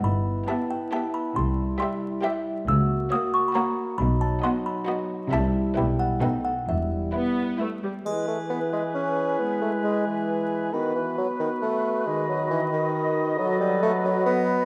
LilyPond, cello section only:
\new Staff \with { instrumentName = "Cello section" } { \clef bass \time 3/4 \key e \minor \tempo 4 = 135 g,4 r2 | c4 r2 | cis4 r2 | b,4 r2 |
c4 b,4 b,4 | e,4 r2 | \key e \major r2. | r2. |
r2. | r2. | \key b \phrygian r2. | }